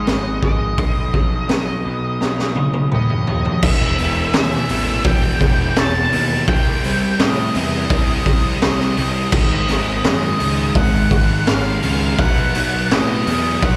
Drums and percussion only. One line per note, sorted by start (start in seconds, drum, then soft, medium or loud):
0.07 snare medium
0.07 open hi-hat soft
0.43 kick medium
0.78 kick loud
0.78 open hi-hat soft
1.14 kick medium
1.49 snare loud
1.49 open hi-hat soft
2.21 snare medium
2.39 snare medium
2.56 high tom medium
2.74 high tom medium
2.92 mid tom medium
3.10 mid tom medium
3.27 floor tom medium
3.45 floor tom medium
3.62 kick loud
3.62 crash loud
3.98 open hi-hat medium
4.33 snare loud
4.33 open hi-hat medium
4.69 open hi-hat medium
5.04 kick loud
5.04 open hi-hat medium
5.40 kick medium
5.40 open hi-hat medium
5.76 snare loud
5.76 open hi-hat medium
6.12 open hi-hat medium
6.48 kick loud
6.48 open hi-hat medium
6.84 open hi-hat medium
7.19 snare loud
7.19 open hi-hat medium
7.55 open hi-hat medium
7.90 kick loud
7.90 open hi-hat medium
8.26 kick medium
8.26 open hi-hat medium
8.62 snare loud
8.62 open hi-hat medium
8.80 snare soft
8.97 open hi-hat medium
9.32 kick loud
9.32 crash loud
9.68 snare soft
9.68 open hi-hat medium
10.04 snare loud
10.04 open hi-hat medium
10.40 open hi-hat medium
10.75 kick loud
10.75 open hi-hat medium
11.11 kick medium
11.11 open hi-hat medium
11.47 snare loud
11.47 open hi-hat medium
11.82 open hi-hat medium
12.19 kick loud
12.19 open hi-hat medium
12.55 open hi-hat medium
12.91 snare loud
12.91 open hi-hat medium
13.27 open hi-hat medium
13.62 kick loud
13.62 open hi-hat medium